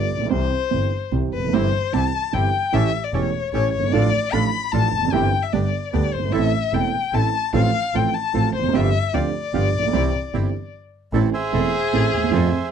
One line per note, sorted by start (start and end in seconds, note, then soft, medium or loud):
0.00 0.31 D5 medium
0.11 0.31 A#1 medium
0.16 0.22 A1 soft
0.21 0.27 A#1 medium
0.26 0.32 B1 medium
0.26 0.48 E3 medium
0.26 0.48 G3 medium
0.30 0.48 C2 medium
0.30 0.49 C2 medium
0.30 0.48 C3 medium
0.30 0.48 C4 medium
0.30 0.48 G4 medium
0.30 1.08 C5 medium
0.71 0.89 G1 soft
0.71 0.89 G1 medium
0.71 0.88 G2 soft
0.71 0.89 E3 soft
0.71 0.89 G3 soft
0.71 0.89 C4 soft
0.71 0.89 G4 soft
1.12 1.29 C2 soft
1.12 1.29 C2 medium
1.12 1.29 C3 soft
1.12 1.29 E3 soft
1.12 1.29 G3 soft
1.12 1.29 C4 soft
1.12 1.29 G4 soft
1.33 1.53 F1 medium
1.33 1.55 B4 medium
1.38 1.43 E1 soft
1.43 1.48 F1 medium
1.48 1.53 F#1 medium
1.53 1.70 G1 medium
1.53 1.70 G2 medium
1.53 1.70 E3 medium
1.53 1.70 G3 medium
1.53 1.70 C4 medium
1.53 1.70 E4 medium
1.53 1.70 G4 medium
1.53 1.95 C5 medium
1.92 2.10 C2 medium
1.92 2.10 C3 medium
1.92 2.10 E3 soft
1.92 2.10 G3 soft
1.92 2.10 C4 soft
1.92 2.10 E4 soft
1.92 2.10 G4 soft
1.92 2.35 A5 medium
2.32 2.50 G1 medium
2.32 2.50 G2 soft
2.32 2.50 E3 soft
2.32 2.50 G3 soft
2.32 2.50 C4 soft
2.32 2.50 E4 soft
2.32 2.50 G4 soft
2.32 2.75 G5 medium
2.72 2.90 A1 medium
2.72 2.90 A2 medium
2.72 2.90 E3 medium
2.72 2.90 A3 medium
2.72 2.90 C#4 medium
2.72 2.90 G4 medium
2.72 2.90 A4 medium
2.72 3.05 E5 medium
3.04 3.16 D5 medium
3.13 3.30 E1 medium
3.13 3.30 E2 medium
3.13 3.30 E3 soft
3.13 3.30 A3 soft
3.13 3.30 C#4 soft
3.13 3.30 G4 soft
3.13 3.30 A4 medium
3.13 3.53 C#5 medium
3.53 3.70 A1 medium
3.53 3.70 A2 soft
3.53 3.70 E3 soft
3.53 3.70 A3 soft
3.53 3.70 C#4 soft
3.53 3.70 G4 soft
3.53 3.70 A4 medium
3.53 3.72 C#5 medium
3.73 3.92 G1 medium
3.73 3.94 C#5 medium
3.79 3.84 F#1 soft
3.83 3.88 G1 medium
3.89 3.94 G#1 medium
3.89 4.10 A1 medium
3.89 4.34 D5 loud
3.93 4.10 A1 medium
3.93 4.10 A2 medium
3.93 4.10 F3 medium
3.93 4.10 A3 medium
3.93 4.10 D4 medium
3.93 4.10 F4 medium
3.93 4.10 A4 medium
4.33 4.50 A1 medium
4.33 4.50 A2 medium
4.33 4.50 F3 soft
4.33 4.50 A3 soft
4.33 4.50 D4 soft
4.33 4.50 F4 soft
4.33 4.50 A4 medium
4.33 4.50 A4 soft
4.33 4.73 B5 medium
4.72 4.90 A1 medium
4.72 4.90 A2 soft
4.72 4.90 F3 soft
4.72 4.90 A3 soft
4.72 4.90 D4 soft
4.72 4.90 F4 soft
4.72 4.90 A4 medium
4.72 4.90 A4 soft
4.72 5.13 A5 loud
4.93 5.12 F1 medium
4.98 5.03 E2 soft
5.03 5.08 F2 medium
5.08 5.13 F#2 medium
5.12 5.29 G1 medium
5.12 5.30 G1 medium
5.12 5.30 G2 medium
5.12 5.29 E3 medium
5.12 5.30 G3 medium
5.12 5.30 C4 medium
5.12 5.30 E4 medium
5.12 5.30 G4 medium
5.12 5.44 G5 loud
5.42 5.54 E5 medium
5.52 5.70 G1 medium
5.52 5.70 G2 medium
5.52 5.70 D3 soft
5.52 5.70 G3 soft
5.52 5.70 B3 soft
5.52 5.70 D4 soft
5.52 5.70 G4 soft
5.52 5.92 D5 medium
5.92 6.10 D2 medium
5.92 6.10 D3 medium
5.92 6.10 G3 soft
5.92 6.10 B3 soft
5.92 6.10 D4 soft
5.92 6.10 G4 soft
5.92 6.15 D5 medium
6.13 6.33 G1 medium
6.13 6.34 C5 medium
6.18 6.23 F#1 soft
6.22 6.28 G1 medium
6.28 6.33 G#1 medium
6.32 6.50 A1 medium
6.32 6.50 A2 medium
6.32 6.49 E3 medium
6.32 6.50 A3 medium
6.32 6.50 C4 medium
6.32 6.50 E4 medium
6.32 6.50 A4 medium
6.32 6.75 E5 medium
6.72 6.90 E1 soft
6.72 6.90 E1 medium
6.72 6.90 E2 medium
6.72 6.90 E3 soft
6.72 6.90 A3 soft
6.72 6.90 C4 soft
6.72 6.90 E4 soft
6.72 6.90 A4 soft
6.72 7.16 G5 medium
7.13 7.30 A1 medium
7.13 7.31 A1 soft
7.13 7.30 A2 medium
7.13 7.30 E3 soft
7.13 7.31 A3 soft
7.13 7.30 C4 soft
7.13 7.31 C4 soft
7.13 7.30 E4 soft
7.13 7.30 A4 medium
7.13 7.31 A4 soft
7.13 7.54 A5 medium
7.53 7.70 A1 medium
7.53 7.71 A1 medium
7.53 7.71 A2 medium
7.53 7.70 F3 medium
7.53 7.70 A3 medium
7.53 7.70 C4 medium
7.53 7.71 C4 medium
7.53 7.71 F4 medium
7.53 7.71 A4 medium
7.53 7.97 F5 loud
7.94 8.11 A1 medium
7.94 8.11 A1 soft
7.94 8.11 A2 soft
7.94 8.11 F3 soft
7.94 8.11 A3 soft
7.94 8.11 C4 soft
7.94 8.11 F4 soft
7.94 8.11 A4 medium
7.94 8.16 G5 medium
8.14 8.54 A5 medium
8.34 8.51 A1 medium
8.34 8.51 A1 soft
8.34 8.51 A2 soft
8.34 8.51 F3 soft
8.34 8.51 A3 soft
8.34 8.50 C4 soft
8.34 8.51 C4 soft
8.34 8.51 F4 soft
8.34 8.51 A4 medium
8.34 8.51 A4 soft
8.54 8.73 F1 medium
8.54 8.77 C5 medium
8.58 8.63 E2 medium
8.63 8.69 F2 medium
8.69 8.74 F#2 medium
8.73 8.91 G1 medium
8.73 8.90 G2 medium
8.73 8.90 F3 medium
8.73 8.90 C4 medium
8.73 8.91 D4 medium
8.73 8.90 F4 medium
8.73 8.91 G4 medium
8.73 9.16 E5 loud
9.13 9.30 D2 medium
9.13 9.30 D3 medium
9.13 9.30 F3 soft
9.13 9.30 C4 soft
9.13 9.31 C4 soft
9.13 9.31 D4 soft
9.13 9.30 F4 soft
9.13 9.30 G4 medium
9.13 9.31 G4 medium
9.13 10.74 D5 medium
9.53 9.70 G1 medium
9.53 9.70 G1 soft
9.53 9.70 G2 medium
9.53 9.70 F3 soft
9.53 9.70 B3 soft
9.53 9.71 D4 soft
9.53 9.70 F4 soft
9.53 9.70 G4 medium
9.53 9.70 G4 soft
9.74 9.92 A#1 medium
9.78 9.83 A1 medium
9.83 9.88 A#1 medium
9.88 9.93 B1 medium
9.93 10.10 C2 medium
9.93 10.10 C3 medium
9.93 10.10 E3 medium
9.93 10.10 G3 medium
9.93 10.10 C4 medium
9.93 10.10 E4 medium
9.93 10.10 G4 medium
10.33 10.50 G1 medium
10.33 10.50 G1 soft
10.33 10.50 G2 medium
10.33 10.50 E3 soft
10.33 10.50 G3 soft
10.33 10.50 C4 soft
10.33 10.51 C4 soft
10.33 10.50 E4 soft
10.33 10.50 G4 medium
10.33 10.51 G4 medium
11.13 11.30 A1 medium
11.13 11.30 A2 medium
11.13 11.30 E3 medium
11.13 11.30 A3 medium
11.13 11.30 C4 medium
11.13 11.30 E4 medium
11.13 11.30 A4 medium
11.33 12.69 G#4 medium
11.33 12.69 C5 medium
11.33 12.69 E5 medium
11.33 12.69 G#5 loud
11.52 11.70 E1 medium
11.52 11.70 E2 medium
11.52 11.69 E3 soft
11.52 11.70 A3 soft
11.52 11.70 C4 medium
11.52 11.70 C4 soft
11.52 11.70 E4 soft
11.52 11.70 A4 medium
11.92 12.10 A1 medium
11.92 12.09 A2 medium
11.92 12.09 E3 soft
11.92 12.09 A3 soft
11.92 12.10 C4 soft
11.92 12.10 E4 soft
11.92 12.10 A4 soft
11.92 12.10 A4 medium
12.13 12.22 D2 medium
12.13 12.32 D#2 medium
12.23 12.28 D#2 medium
12.27 12.32 E2 medium
12.31 12.49 F2 medium
12.31 12.49 F3 medium
12.31 12.49 A3 medium
12.31 12.49 C4 medium
12.31 12.49 F4 medium
12.31 12.49 A4 medium